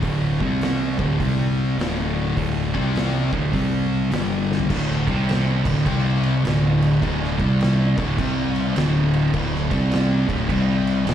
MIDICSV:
0, 0, Header, 1, 4, 480
1, 0, Start_track
1, 0, Tempo, 580833
1, 30, Time_signature, 4, 2, 24, 8
1, 9209, End_track
2, 0, Start_track
2, 0, Title_t, "Distorted electric guitar"
2, 0, Program_c, 0, 30
2, 22, Note_on_c, 0, 38, 84
2, 29, Note_on_c, 0, 45, 100
2, 34, Note_on_c, 0, 50, 104
2, 327, Note_off_c, 0, 38, 0
2, 330, Note_off_c, 0, 45, 0
2, 331, Note_on_c, 0, 48, 81
2, 333, Note_off_c, 0, 50, 0
2, 334, Note_on_c, 0, 55, 107
2, 341, Note_on_c, 0, 60, 106
2, 809, Note_off_c, 0, 48, 0
2, 811, Note_off_c, 0, 55, 0
2, 814, Note_off_c, 0, 60, 0
2, 818, Note_on_c, 0, 38, 92
2, 821, Note_on_c, 0, 45, 91
2, 827, Note_on_c, 0, 50, 94
2, 982, Note_off_c, 0, 38, 0
2, 985, Note_on_c, 0, 48, 96
2, 987, Note_off_c, 0, 45, 0
2, 990, Note_on_c, 0, 55, 99
2, 991, Note_off_c, 0, 50, 0
2, 994, Note_on_c, 0, 60, 107
2, 1462, Note_off_c, 0, 48, 0
2, 1466, Note_on_c, 0, 38, 95
2, 1470, Note_off_c, 0, 55, 0
2, 1472, Note_off_c, 0, 60, 0
2, 1474, Note_on_c, 0, 45, 99
2, 1478, Note_on_c, 0, 50, 104
2, 1940, Note_off_c, 0, 38, 0
2, 1945, Note_off_c, 0, 45, 0
2, 1950, Note_on_c, 0, 38, 90
2, 1951, Note_off_c, 0, 50, 0
2, 1954, Note_on_c, 0, 45, 106
2, 1961, Note_on_c, 0, 50, 107
2, 2260, Note_off_c, 0, 38, 0
2, 2260, Note_on_c, 0, 48, 86
2, 2265, Note_off_c, 0, 45, 0
2, 2265, Note_on_c, 0, 55, 104
2, 2270, Note_off_c, 0, 50, 0
2, 2270, Note_on_c, 0, 60, 105
2, 2737, Note_off_c, 0, 48, 0
2, 2740, Note_off_c, 0, 55, 0
2, 2742, Note_off_c, 0, 60, 0
2, 2748, Note_on_c, 0, 38, 84
2, 2753, Note_on_c, 0, 45, 97
2, 2760, Note_on_c, 0, 50, 99
2, 2911, Note_off_c, 0, 38, 0
2, 2915, Note_on_c, 0, 48, 87
2, 2916, Note_off_c, 0, 45, 0
2, 2919, Note_on_c, 0, 55, 104
2, 2921, Note_off_c, 0, 50, 0
2, 2924, Note_on_c, 0, 60, 97
2, 3394, Note_off_c, 0, 48, 0
2, 3397, Note_off_c, 0, 55, 0
2, 3399, Note_off_c, 0, 60, 0
2, 3401, Note_on_c, 0, 43, 91
2, 3407, Note_on_c, 0, 50, 92
2, 3409, Note_on_c, 0, 55, 102
2, 3876, Note_off_c, 0, 43, 0
2, 3879, Note_on_c, 0, 38, 95
2, 3880, Note_off_c, 0, 50, 0
2, 3881, Note_off_c, 0, 55, 0
2, 3888, Note_on_c, 0, 45, 102
2, 3893, Note_on_c, 0, 50, 114
2, 4181, Note_off_c, 0, 38, 0
2, 4185, Note_off_c, 0, 45, 0
2, 4187, Note_off_c, 0, 50, 0
2, 4189, Note_on_c, 0, 48, 102
2, 4193, Note_on_c, 0, 55, 99
2, 4196, Note_on_c, 0, 60, 105
2, 4661, Note_off_c, 0, 48, 0
2, 4663, Note_off_c, 0, 55, 0
2, 4664, Note_off_c, 0, 60, 0
2, 4672, Note_on_c, 0, 38, 86
2, 4678, Note_on_c, 0, 45, 94
2, 4682, Note_on_c, 0, 50, 106
2, 4839, Note_off_c, 0, 38, 0
2, 4839, Note_on_c, 0, 48, 110
2, 4844, Note_off_c, 0, 45, 0
2, 4844, Note_on_c, 0, 55, 102
2, 4847, Note_off_c, 0, 50, 0
2, 4847, Note_on_c, 0, 60, 112
2, 5314, Note_off_c, 0, 48, 0
2, 5317, Note_off_c, 0, 55, 0
2, 5318, Note_off_c, 0, 60, 0
2, 5318, Note_on_c, 0, 38, 90
2, 5324, Note_on_c, 0, 45, 102
2, 5330, Note_on_c, 0, 50, 99
2, 5790, Note_off_c, 0, 38, 0
2, 5796, Note_off_c, 0, 45, 0
2, 5799, Note_off_c, 0, 50, 0
2, 5800, Note_on_c, 0, 38, 106
2, 5806, Note_on_c, 0, 45, 100
2, 5813, Note_on_c, 0, 50, 109
2, 6098, Note_off_c, 0, 38, 0
2, 6101, Note_off_c, 0, 45, 0
2, 6105, Note_off_c, 0, 50, 0
2, 6106, Note_on_c, 0, 48, 98
2, 6109, Note_on_c, 0, 55, 98
2, 6118, Note_on_c, 0, 60, 100
2, 6576, Note_off_c, 0, 48, 0
2, 6578, Note_off_c, 0, 55, 0
2, 6582, Note_off_c, 0, 60, 0
2, 6588, Note_on_c, 0, 38, 99
2, 6594, Note_on_c, 0, 45, 101
2, 6596, Note_on_c, 0, 50, 108
2, 6753, Note_off_c, 0, 38, 0
2, 6756, Note_off_c, 0, 45, 0
2, 6757, Note_off_c, 0, 50, 0
2, 6761, Note_on_c, 0, 48, 108
2, 6768, Note_on_c, 0, 55, 113
2, 6771, Note_on_c, 0, 60, 111
2, 7232, Note_off_c, 0, 48, 0
2, 7236, Note_off_c, 0, 55, 0
2, 7237, Note_off_c, 0, 60, 0
2, 7237, Note_on_c, 0, 38, 86
2, 7246, Note_on_c, 0, 45, 103
2, 7247, Note_on_c, 0, 50, 106
2, 7705, Note_off_c, 0, 38, 0
2, 7713, Note_off_c, 0, 45, 0
2, 7714, Note_off_c, 0, 50, 0
2, 7715, Note_on_c, 0, 38, 98
2, 7722, Note_on_c, 0, 45, 99
2, 7726, Note_on_c, 0, 50, 110
2, 8012, Note_off_c, 0, 38, 0
2, 8016, Note_off_c, 0, 45, 0
2, 8018, Note_off_c, 0, 50, 0
2, 8022, Note_on_c, 0, 48, 94
2, 8026, Note_on_c, 0, 55, 103
2, 8033, Note_on_c, 0, 60, 112
2, 8488, Note_off_c, 0, 48, 0
2, 8491, Note_on_c, 0, 38, 89
2, 8492, Note_off_c, 0, 55, 0
2, 8495, Note_off_c, 0, 60, 0
2, 8498, Note_on_c, 0, 45, 95
2, 8499, Note_on_c, 0, 50, 110
2, 8657, Note_off_c, 0, 38, 0
2, 8660, Note_on_c, 0, 48, 100
2, 8664, Note_off_c, 0, 45, 0
2, 8664, Note_off_c, 0, 50, 0
2, 8668, Note_on_c, 0, 55, 101
2, 8671, Note_on_c, 0, 60, 101
2, 9133, Note_off_c, 0, 48, 0
2, 9136, Note_on_c, 0, 38, 98
2, 9138, Note_off_c, 0, 55, 0
2, 9142, Note_on_c, 0, 45, 95
2, 9143, Note_off_c, 0, 60, 0
2, 9146, Note_on_c, 0, 50, 96
2, 9209, Note_off_c, 0, 38, 0
2, 9209, Note_off_c, 0, 45, 0
2, 9209, Note_off_c, 0, 50, 0
2, 9209, End_track
3, 0, Start_track
3, 0, Title_t, "Fingered electric bass"
3, 0, Program_c, 1, 33
3, 23, Note_on_c, 1, 26, 92
3, 315, Note_off_c, 1, 26, 0
3, 336, Note_on_c, 1, 36, 94
3, 788, Note_off_c, 1, 36, 0
3, 818, Note_on_c, 1, 26, 93
3, 981, Note_off_c, 1, 26, 0
3, 990, Note_on_c, 1, 36, 93
3, 1442, Note_off_c, 1, 36, 0
3, 1473, Note_on_c, 1, 26, 87
3, 1925, Note_off_c, 1, 26, 0
3, 1955, Note_on_c, 1, 26, 88
3, 2245, Note_off_c, 1, 26, 0
3, 2273, Note_on_c, 1, 36, 95
3, 2720, Note_off_c, 1, 36, 0
3, 2750, Note_on_c, 1, 26, 92
3, 2910, Note_off_c, 1, 26, 0
3, 2922, Note_on_c, 1, 36, 84
3, 3370, Note_off_c, 1, 36, 0
3, 3398, Note_on_c, 1, 31, 92
3, 3848, Note_off_c, 1, 31, 0
3, 3881, Note_on_c, 1, 26, 100
3, 4169, Note_off_c, 1, 26, 0
3, 4190, Note_on_c, 1, 36, 97
3, 4637, Note_off_c, 1, 36, 0
3, 4670, Note_on_c, 1, 26, 95
3, 4830, Note_off_c, 1, 26, 0
3, 4843, Note_on_c, 1, 36, 96
3, 5289, Note_off_c, 1, 36, 0
3, 5331, Note_on_c, 1, 26, 90
3, 5772, Note_off_c, 1, 26, 0
3, 5800, Note_on_c, 1, 26, 95
3, 6086, Note_off_c, 1, 26, 0
3, 6112, Note_on_c, 1, 36, 97
3, 6555, Note_off_c, 1, 36, 0
3, 6592, Note_on_c, 1, 26, 89
3, 6748, Note_off_c, 1, 26, 0
3, 6761, Note_on_c, 1, 36, 97
3, 7204, Note_off_c, 1, 36, 0
3, 7247, Note_on_c, 1, 26, 99
3, 7686, Note_off_c, 1, 26, 0
3, 7718, Note_on_c, 1, 26, 101
3, 8001, Note_off_c, 1, 26, 0
3, 8025, Note_on_c, 1, 36, 97
3, 8468, Note_off_c, 1, 36, 0
3, 8505, Note_on_c, 1, 26, 93
3, 8661, Note_off_c, 1, 26, 0
3, 8667, Note_on_c, 1, 36, 97
3, 9113, Note_off_c, 1, 36, 0
3, 9139, Note_on_c, 1, 26, 94
3, 9209, Note_off_c, 1, 26, 0
3, 9209, End_track
4, 0, Start_track
4, 0, Title_t, "Drums"
4, 23, Note_on_c, 9, 36, 105
4, 23, Note_on_c, 9, 46, 58
4, 105, Note_off_c, 9, 46, 0
4, 106, Note_off_c, 9, 36, 0
4, 334, Note_on_c, 9, 36, 100
4, 417, Note_off_c, 9, 36, 0
4, 505, Note_on_c, 9, 46, 58
4, 523, Note_on_c, 9, 38, 108
4, 587, Note_off_c, 9, 46, 0
4, 606, Note_off_c, 9, 38, 0
4, 819, Note_on_c, 9, 36, 121
4, 901, Note_off_c, 9, 36, 0
4, 993, Note_on_c, 9, 36, 109
4, 997, Note_on_c, 9, 46, 57
4, 1075, Note_off_c, 9, 36, 0
4, 1080, Note_off_c, 9, 46, 0
4, 1481, Note_on_c, 9, 46, 53
4, 1499, Note_on_c, 9, 38, 118
4, 1563, Note_off_c, 9, 46, 0
4, 1581, Note_off_c, 9, 38, 0
4, 1960, Note_on_c, 9, 36, 100
4, 1962, Note_on_c, 9, 46, 56
4, 2042, Note_off_c, 9, 36, 0
4, 2045, Note_off_c, 9, 46, 0
4, 2271, Note_on_c, 9, 36, 102
4, 2354, Note_off_c, 9, 36, 0
4, 2440, Note_on_c, 9, 46, 55
4, 2458, Note_on_c, 9, 38, 99
4, 2523, Note_off_c, 9, 46, 0
4, 2541, Note_off_c, 9, 38, 0
4, 2750, Note_on_c, 9, 36, 110
4, 2832, Note_off_c, 9, 36, 0
4, 2920, Note_on_c, 9, 36, 109
4, 2921, Note_on_c, 9, 46, 58
4, 3003, Note_off_c, 9, 36, 0
4, 3003, Note_off_c, 9, 46, 0
4, 3399, Note_on_c, 9, 46, 61
4, 3418, Note_on_c, 9, 38, 113
4, 3482, Note_off_c, 9, 46, 0
4, 3500, Note_off_c, 9, 38, 0
4, 3733, Note_on_c, 9, 38, 63
4, 3797, Note_on_c, 9, 43, 88
4, 3815, Note_off_c, 9, 38, 0
4, 3880, Note_off_c, 9, 43, 0
4, 3884, Note_on_c, 9, 49, 119
4, 3884, Note_on_c, 9, 57, 88
4, 3885, Note_on_c, 9, 36, 116
4, 3967, Note_off_c, 9, 36, 0
4, 3967, Note_off_c, 9, 49, 0
4, 3967, Note_off_c, 9, 57, 0
4, 4059, Note_on_c, 9, 38, 35
4, 4142, Note_off_c, 9, 38, 0
4, 4194, Note_on_c, 9, 36, 113
4, 4200, Note_on_c, 9, 57, 65
4, 4276, Note_off_c, 9, 36, 0
4, 4282, Note_off_c, 9, 57, 0
4, 4370, Note_on_c, 9, 57, 85
4, 4388, Note_on_c, 9, 38, 108
4, 4453, Note_off_c, 9, 57, 0
4, 4471, Note_off_c, 9, 38, 0
4, 4673, Note_on_c, 9, 36, 124
4, 4675, Note_on_c, 9, 57, 106
4, 4755, Note_off_c, 9, 36, 0
4, 4758, Note_off_c, 9, 57, 0
4, 4844, Note_on_c, 9, 36, 115
4, 4845, Note_on_c, 9, 57, 89
4, 4927, Note_off_c, 9, 36, 0
4, 4928, Note_off_c, 9, 57, 0
4, 5151, Note_on_c, 9, 57, 62
4, 5234, Note_off_c, 9, 57, 0
4, 5329, Note_on_c, 9, 57, 77
4, 5347, Note_on_c, 9, 38, 118
4, 5412, Note_off_c, 9, 57, 0
4, 5430, Note_off_c, 9, 38, 0
4, 5638, Note_on_c, 9, 57, 67
4, 5721, Note_off_c, 9, 57, 0
4, 5805, Note_on_c, 9, 36, 106
4, 5810, Note_on_c, 9, 57, 76
4, 5888, Note_off_c, 9, 36, 0
4, 5892, Note_off_c, 9, 57, 0
4, 5983, Note_on_c, 9, 38, 34
4, 6066, Note_off_c, 9, 38, 0
4, 6112, Note_on_c, 9, 36, 105
4, 6113, Note_on_c, 9, 57, 62
4, 6195, Note_off_c, 9, 36, 0
4, 6195, Note_off_c, 9, 57, 0
4, 6285, Note_on_c, 9, 57, 78
4, 6303, Note_on_c, 9, 38, 115
4, 6368, Note_off_c, 9, 57, 0
4, 6386, Note_off_c, 9, 38, 0
4, 6593, Note_on_c, 9, 36, 127
4, 6595, Note_on_c, 9, 57, 70
4, 6676, Note_off_c, 9, 36, 0
4, 6678, Note_off_c, 9, 57, 0
4, 6764, Note_on_c, 9, 36, 112
4, 6765, Note_on_c, 9, 57, 91
4, 6846, Note_off_c, 9, 36, 0
4, 6848, Note_off_c, 9, 57, 0
4, 7071, Note_on_c, 9, 57, 70
4, 7154, Note_off_c, 9, 57, 0
4, 7239, Note_on_c, 9, 57, 89
4, 7257, Note_on_c, 9, 38, 120
4, 7322, Note_off_c, 9, 57, 0
4, 7340, Note_off_c, 9, 38, 0
4, 7550, Note_on_c, 9, 57, 66
4, 7632, Note_off_c, 9, 57, 0
4, 7715, Note_on_c, 9, 57, 95
4, 7718, Note_on_c, 9, 36, 109
4, 7797, Note_off_c, 9, 57, 0
4, 7800, Note_off_c, 9, 36, 0
4, 7890, Note_on_c, 9, 38, 34
4, 7972, Note_off_c, 9, 38, 0
4, 8026, Note_on_c, 9, 36, 102
4, 8026, Note_on_c, 9, 57, 70
4, 8108, Note_off_c, 9, 36, 0
4, 8108, Note_off_c, 9, 57, 0
4, 8194, Note_on_c, 9, 57, 86
4, 8212, Note_on_c, 9, 38, 110
4, 8277, Note_off_c, 9, 57, 0
4, 8295, Note_off_c, 9, 38, 0
4, 8503, Note_on_c, 9, 36, 118
4, 8508, Note_on_c, 9, 57, 76
4, 8585, Note_off_c, 9, 36, 0
4, 8590, Note_off_c, 9, 57, 0
4, 8672, Note_on_c, 9, 36, 113
4, 8676, Note_on_c, 9, 57, 87
4, 8754, Note_off_c, 9, 36, 0
4, 8759, Note_off_c, 9, 57, 0
4, 8984, Note_on_c, 9, 57, 64
4, 9067, Note_off_c, 9, 57, 0
4, 9147, Note_on_c, 9, 57, 80
4, 9165, Note_on_c, 9, 38, 116
4, 9209, Note_off_c, 9, 38, 0
4, 9209, Note_off_c, 9, 57, 0
4, 9209, End_track
0, 0, End_of_file